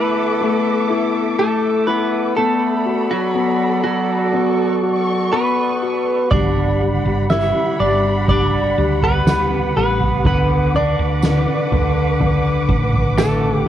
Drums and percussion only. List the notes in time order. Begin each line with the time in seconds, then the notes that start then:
6.31 kick, floor tom
7.30 snare, tambourine
8.28 kick, floor tom
9.02 floor tom
9.27 snare, tambourine
10.00 floor tom
10.25 kick, floor tom
11.22 snare, tambourine
11.71 floor tom
12.20 floor tom
12.69 kick
12.93 floor tom
13.18 snare, tambourine